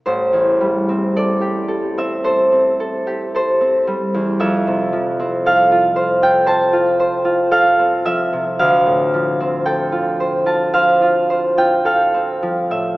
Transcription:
\new Staff \with { instrumentName = "Harp" } { \time 4/4 \key a \minor \tempo 4 = 56 << { c''4 d''8. e''16 c''4 c''4 | e''4 f''8. g''16 a''4 f''8 e''8 | \key d \minor f''4 g''8. a''16 f''8. g''16 f''8. e''16 | } \\ { a,,16 e,16 g16 c'16 a'16 g'16 a'16 c'16 a'16 c'16 a'16 g'16 a'16 c'16 g16 e,16 | f,16 c16 f16 c'16 a'16 f'16 c''16 f'16 c''16 f'16 c''16 f'16 a'16 c'16 f16 c16 | d,16 a,16 f16 c'16 a'16 f'16 c''16 f'16 c''16 f'16 c''16 f'16 a'16 c'16 f16 a,16 | } >> }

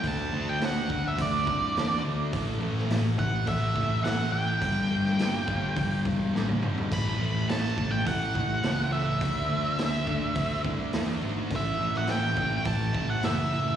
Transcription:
<<
  \new Staff \with { instrumentName = "Lead electric guitar" } { \time 4/4 \key d \mixolydian \tempo 4 = 104 a''8. g''16 fis''8. e''16 d''4. r8 | r4. fis''8 e''4 fis''8 g''8~ | g''2~ g''8 r4. | b''4 a''8. g''16 fis''4. e''8~ |
e''2~ e''8 r4. | e''8. fis''16 g''4 a''8. fis''16 e''4 | }
  \new Staff \with { instrumentName = "Distorted electric guitar" } { \clef bass \time 4/4 \key d \mixolydian <d a d'>8 <d a d'>8 <d a d'>8 <d a d'>8 <d a d'>8 <d a d'>8 <d a d'>8 <d a d'>8 | <a, e a>8 <a, e a>8 <a, e a>8 <a, e a>8 <a, e a>8 <a, e a>8 <a, e a>8 <a, e a>8 | <g, d g>8 <g, d g>8 <g, d g>8 <g, d g>8 <g, d g>8 <g, d g>8 <g, d g>8 <g, d g>8 | <a, e a>8 <a, e a>8 <a, e a>8 <a, e a>8 <a, e a>8 <a, e a>8 <a, e a>8 <a, e a>8 |
<d a d'>8 <d a d'>8 <d a d'>8 <d a d'>8 <d a d'>8 <d a d'>8 <d a d'>8 <d a d'>8 | <a, e a>8 <a, e a>8 <a, e a>8 <a, e a>8 <a, e a>8 <a, e a>8 <a, e a>8 <a, e a>8 | }
  \new Staff \with { instrumentName = "Picked electric bass" } { \clef bass \time 4/4 \key d \mixolydian d,8 d,8 d,8 d,8 d,8 c,8 e,8 d,8 | a,,8 a,,8 a,,8 a,,8 a,,8 a,,8 a,,4 | g,,8 g,,8 g,,8 g,,8 g,,8 e,,8 a,,8 gis,,8 | a,,8 a,,8 a,,8 a,,8 a,,8 a,,8 cis,4 |
d,8 d,8 d,8 d,8 d,8 c,8 e,8 gis,,8 | a,,8 a,,8 a,,8 a,,8 a,,8 a,,8 fis,,4 | }
  \new DrumStaff \with { instrumentName = "Drums" } \drummode { \time 4/4 <hho bd>4 <hho sn>8 bd8 <hho bd>8 bd8 <hho sn>4 | <hho bd>8. sn16 <hho sn>8 bd8 <hho bd>8 bd8 <hho sn>4 | <hho bd>8. sn16 <hho sn>8 bd8 <hho bd>8 bd8 sn16 tommh16 toml16 tomfh16 | <cymc bd>4 <hho sn>8 bd8 <hho bd>8 bd8 <hho sn>4 |
<hho bd>4 <hho sn>8 bd8 <hho bd>8 bd8 <hho sn>4 | <hho bd>8. sn16 <hho sn>8 bd8 <hho bd>8 bd8 <hho sn>4 | }
>>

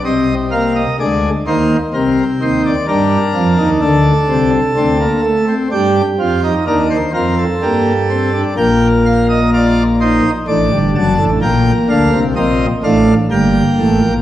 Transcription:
<<
  \new Staff \with { instrumentName = "Pipe organ" } { \time 3/4 \key g \phrygian \tempo 4 = 63 << { ees''8 f''16 ees''16 d''8 c''8 bes'8 c''16 d''16 | bes'4 a'2 | g'4 bes'16 c''16 bes'16 a'4~ a'16 | \key g \minor g''8 f''16 ees''16 d''8 c''8 d''8 a''8 |
g''8 f''8 ees''8 f''8 g''4 | } \\ { c'8 bes8 aes8 bes8 c'4 | d'2 c'16 bes16 a16 c'16 | d'8 f'16 ees'16 d'8 c'8 bes8 c'16 d'16 | bes4 f'8 ees'8 d'4 |
bes4 c'8 d'8 bes4 | } >> }
  \new Staff \with { instrumentName = "Pipe organ" } { \clef bass \time 3/4 \key g \phrygian <c, c>4 <d, d>8 <ees, ees>8 <c, c>8 <ees, ees>8 | <g, g>8 <f, f>16 <ees, ees>16 <d, d>8 <c, c>8 <d, d>8 r8 | <g, g>8 <f, f>8 <ees, ees>8 <f, f>8 <g, g>4 | \key g \minor <bes,, bes,>2 <a,, a,>16 <g,, g,>16 <fis,, fis,>16 <a,, a,>16 |
<bes,, bes,>8 <d, d>16 <c, c>16 <bes,, bes,>8 <a,, a,>8 <g,, g,>8 <a,, a,>16 <bes,, bes,>16 | }
>>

